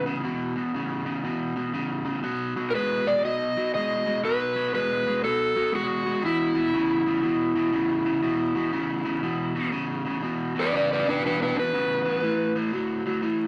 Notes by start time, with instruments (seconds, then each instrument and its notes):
0.06 overdriven electric guitar E2 C#3
0.23 overdriven electric guitar E2 B2
0.56 overdriven electric guitar E2 B2
0.74 overdriven electric guitar E2 C#3
1.05 overdriven electric guitar E2 C#3
1.24 overdriven electric guitar E2 B2
1.56 overdriven electric guitar E2 B2
1.73 overdriven electric guitar E2 C#3
2.05 overdriven electric guitar E2 C#3
2.23 overdriven electric guitar B2 F#3
2.56 overdriven electric guitar B2 F#3
2.71 overdriven electric guitar B2, electric slide guitar A#4
2.75 overdriven electric guitar G#3, electric slide guitar B4
3.06 overdriven electric guitar B2 G#3, electric slide guitar D5
3.24 overdriven electric guitar B2 F#3, electric slide guitar D#5
3.57 overdriven electric guitar B2 F#3
3.74 overdriven electric guitar B2 G#3, electric slide guitar D#5
4.06 overdriven electric guitar B2 G#3
4.23 overdriven electric guitar B2 F#3, electric slide guitar B4
4.56 overdriven electric guitar B2 F#3
4.73 overdriven electric guitar B2 G#3, electric slide guitar B4
5.07 overdriven electric guitar B2 G#3
5.24 overdriven electric guitar B2 F#3, electric slide guitar A4
5.56 overdriven electric guitar B2 F#3
5.72 overdriven electric guitar B2 G#3, electric slide guitar F#4
6.06 overdriven electric guitar B2 G#3
6.22 overdriven electric guitar E2 B2
6.26 electric slide guitar E4
6.54 overdriven electric guitar E2 B2
6.74 overdriven electric guitar E2 C#3
7.06 overdriven electric guitar E2 C#3
7.23 overdriven electric guitar E2 B2
7.55 overdriven electric guitar E2 B2
7.73 overdriven electric guitar E2 C#3
8.05 overdriven electric guitar E2 C#3
8.23 overdriven electric guitar E2 B2
8.55 overdriven electric guitar E2 B2
8.73 overdriven electric guitar E2 C#3
9.05 overdriven electric guitar E2 C#3
9.23 overdriven electric guitar E2 B2
9.55 overdriven electric guitar E2 B2
9.72 overdriven electric guitar E2 C#3
10.05 overdriven electric guitar E2 C#3
10.22 overdriven electric guitar E2 B2
10.55 overdriven electric guitar E2 B2
10.59 electric slide guitar B4 D5
10.72 overdriven electric guitar E2 C#3, electric slide guitar B4
10.76 electric slide guitar D5
10.93 electric slide guitar B4 D5
11.04 overdriven electric guitar E2 C#3
11.09 electric slide guitar D4 B4
11.22 overdriven electric guitar E2 B2, electric slide guitar D4
11.27 electric slide guitar B4
11.42 electric slide guitar D4 B4
11.55 overdriven electric guitar E2 B2
11.59 electric slide guitar B4
11.74 overdriven electric guitar E2 C#3
12.05 overdriven electric guitar E2 C#3
12.23 overdriven electric guitar A2 E3
12.55 overdriven electric guitar A2 E3
12.73 overdriven electric guitar A2 F#3
13.06 overdriven electric guitar A2 F#3
13.22 overdriven electric guitar A2 E3